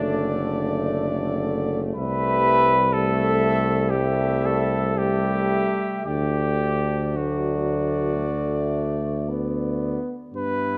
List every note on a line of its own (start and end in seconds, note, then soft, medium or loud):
0.00 1.95 F#1 medium
0.00 1.80 D3 medium
0.00 1.94 A3 medium
0.00 1.46 D4 medium
0.00 1.81 D5 medium
1.96 5.89 C2 medium
1.96 2.89 G3 medium
1.96 2.78 A3 medium
1.96 2.95 B4 loud
1.96 2.90 E5 medium
2.93 3.91 G3 medium
2.93 3.91 A3 medium
2.93 3.92 A4 loud
2.93 3.92 E5 medium
3.90 4.96 G3 medium
3.90 4.95 A3 medium
3.90 4.47 G4 medium
3.90 4.95 E5 medium
4.45 4.99 A4 medium
4.97 6.04 G3 medium
4.97 6.04 A3 medium
4.97 6.06 G4 loud
4.97 6.09 E5 medium
6.05 9.98 D2 medium
6.05 7.14 D3 medium
6.05 7.14 A3 medium
6.05 7.18 G4 medium
6.05 7.17 D5 medium
7.15 8.21 F#3 medium
7.15 9.98 A3 medium
7.15 9.29 F#4 medium
7.15 9.99 D5 medium
8.25 9.31 A3 medium
9.29 10.19 B3 medium
10.34 10.78 G2 medium
10.34 10.78 B3 medium
10.34 10.78 E4 medium
10.34 10.78 B4 medium